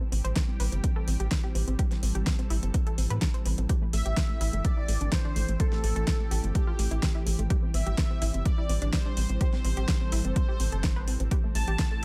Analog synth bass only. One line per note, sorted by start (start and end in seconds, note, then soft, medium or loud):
0.12 0.21 A1 medium
0.25 0.33 A1 medium
0.60 0.69 A1 medium
0.72 0.81 G1 medium
1.07 1.17 A1 medium
1.20 1.28 A1 medium
1.55 1.64 A1 medium
1.68 1.76 A1 medium
2.03 2.12 A1 loud
2.15 2.24 A1 medium
2.50 2.59 A1 medium
2.63 2.71 G1 medium
2.98 3.07 A1 medium
3.10 3.19 A2 medium
3.46 3.55 A1 medium
3.58 3.66 A1 medium
3.93 4.02 A1 medium
4.06 4.14 A1 medium
4.41 4.50 A1 medium
4.53 4.62 G1 medium
4.88 4.98 A1 medium
5.01 5.09 A1 medium
5.36 5.45 A1 medium
5.48 5.57 A1 medium
5.84 5.93 A1 medium
5.96 6.04 A1 medium
6.31 6.40 A1 loud
6.44 6.52 G1 medium
6.79 6.88 A1 medium
6.91 7.00 A1 medium
7.26 7.36 A1 medium
7.39 7.47 A1 medium
7.74 7.83 A1 loud
7.87 7.95 A1 medium
8.22 8.31 A1 loud
8.34 8.43 G1 medium
8.69 8.79 A1 medium
8.82 8.90 A1 medium
9.17 9.26 A1 medium
9.29 9.38 A1 medium
9.65 9.74 A1 medium
9.77 9.85 A1 medium
10.12 10.21 A1 loud
10.25 10.33 G1 medium
10.60 10.69 A1 medium
10.72 11.09 G1 medium
11.08 11.17 A1 medium
11.20 11.28 A1 medium
11.55 11.64 A1 medium
11.68 11.76 A1 medium